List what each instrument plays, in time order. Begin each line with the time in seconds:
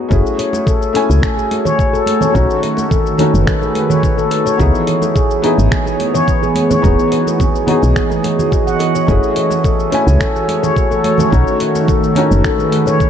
Already playing: felt piano B3 D#4 F#4 G#4
0.08 fm bass F#1, felt piano A3 C#4 E4 G#4, handpan F#4, kick, shaker
0.26 shaker
0.38 analog synth pad F#4, handpan C#5, closed hi-hat
0.44 analog synth pad A3
0.53 high bongo, high conga, shaker
0.66 handpan A4, kick, shaker
0.82 shaker
0.93 felt piano A3 C#4 E4 G#5, handpan C#5, closed hi-hat
1.09 fm bass C#2, analog synth pad C#5, high conga, shaker
1.22 handpan A4, finger snap, kick, shaker
1.37 handpan G#4, shaker
1.51 closed hi-hat, high bongo, high conga
1.65 handpan C#5, low conga, shaker
1.79 kick, shaker
1.93 handpan A4, shaker
2.06 closed hi-hat, high conga
2.21 handpan C#5, high bongo, high conga, low conga, shaker
2.32 fm bass B1, analog synth pad D#3, felt piano A3 C#4 D#4 F#4, handpan F#4, kick, shaker
2.50 shaker
2.63 handpan C#5, closed hi-hat
2.77 high bongo, high conga, shaker
2.91 handpan A4, kick, low conga, shaker
3.06 shaker
3.15 felt piano A3, analog synth pad B4, low conga
3.19 felt piano C#4 D#4 F#4, handpan C#5, closed hi-hat
3.34 fm bass F#1, high conga, shaker
3.47 handpan A4, finger snap, kick, shaker
3.62 handpan G#4, high bongo, high conga, shaker
3.75 closed hi-hat, high bongo, high conga
3.90 handpan C#5, low conga, shaker
4.03 kick, high bongo, shaker
4.18 handpan A4, shaker
4.31 closed hi-hat, high bongo
4.46 handpan C#5, shaker
4.58 fm bass C#2, analog synth pad E3, felt piano B3 D#4 E4 G#4, handpan F#4, kick, shaker
4.75 shaker
4.87 handpan C#5, closed hi-hat
4.92 analog synth pad G#4
5.00 analog synth pad B3 C#5, high bongo, high conga, shaker
5.15 handpan G#4, kick, shaker
5.31 shaker
5.42 felt piano B3 D#4 E4 G#4, handpan C#5, closed hi-hat
5.58 fm bass G#1, high conga, shaker
5.71 handpan G#4, finger snap, kick, shaker
5.86 handpan G#4, shaker
6.00 closed hi-hat, high bongo, high conga
6.14 handpan C#5, low conga, shaker
6.28 kick, shaker
6.43 handpan G#4, shaker
6.55 closed hi-hat, high conga
6.71 handpan C#5, high bongo, high conga, low conga, shaker
6.82 fm bass E1, felt piano B3 D#4 F#4 G#4, handpan F#4, kick, shaker
6.99 shaker
7.12 handpan C#5, closed hi-hat
7.27 high bongo, high conga, shaker
7.40 handpan G#4, analog synth pad D#5, kick, low conga, shaker
7.55 shaker
7.66 felt piano B3 D#4 F#4 G#4, handpan C#5, closed hi-hat, low conga
7.82 fm bass B1, high conga, shaker
7.96 handpan G#4, finger snap, kick, shaker
8.10 handpan G#4, high bongo, high conga, shaker
8.23 handpan C#5, closed hi-hat, high bongo, high conga
8.39 handpan F#4, low conga, shaker
8.52 handpan F#4, kick, high bongo, shaker
8.67 handpan F#5, shaker
8.79 closed hi-hat, high bongo
8.95 handpan C#5, shaker
9.07 fm bass F#1, felt piano A3 C#4 E4 G#4, handpan F#4, kick, shaker
9.23 shaker
9.34 analog synth pad A3, handpan C#5, closed hi-hat
9.50 high bongo, high conga, shaker
9.59 analog synth pad F#4
9.64 handpan A4, kick, shaker
9.80 shaker
9.90 felt piano A3 C#4 E4, handpan C#5, closed hi-hat
9.94 felt piano G#5
10.07 fm bass C#2, analog synth pad C#5, high conga, shaker
10.20 handpan A4, finger snap, kick, shaker
10.35 handpan G#4, shaker
10.48 closed hi-hat, high bongo, high conga
10.63 handpan C#5, low conga, shaker
10.76 kick, shaker
10.91 handpan A4, shaker
11.04 closed hi-hat, high conga
11.18 handpan C#5, high bongo, high conga, low conga, shaker
11.30 fm bass B1, analog synth pad D#3, felt piano A3 C#4 D#4, handpan F#4, kick, shaker
11.34 felt piano F#4
11.47 shaker
11.60 handpan C#5, closed hi-hat
11.75 high bongo, high conga, shaker
11.88 handpan A4, kick, low conga, shaker
12.04 shaker
12.15 felt piano A3 C#4 D#4 F#4, handpan C#5, closed hi-hat, low conga
12.31 fm bass F#1, analog synth pad B4, high conga, shaker
12.44 handpan A4, finger snap, kick, shaker
12.58 handpan G#4, high bongo, high conga, shaker
12.72 closed hi-hat, high bongo, high conga
12.86 handpan C#5, low conga, shaker
13.00 kick, high bongo, shaker